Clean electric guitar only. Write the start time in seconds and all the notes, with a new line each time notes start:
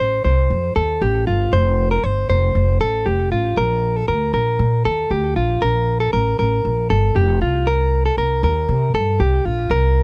0.00 C5
0.24 C5
0.76 A4
1.02 G4
1.27 F4
1.53 C5
1.91 A#4
2.04 C5
2.30 C5
2.81 A4
3.06 G4
3.32 F4
3.57 A#4
3.96 A4
4.08 A#4
4.34 A#4
4.85 A4
5.11 G4
5.36 F4
5.62 A#4
6.00 A4
6.13 A#4
6.39 A#4
6.90 A4
7.16 G4
7.42 F4
7.67 A#4
8.06 A4
8.18 A#4
8.44 A#4
8.95 A4
9.20 G4
9.45 F4
9.71 A#4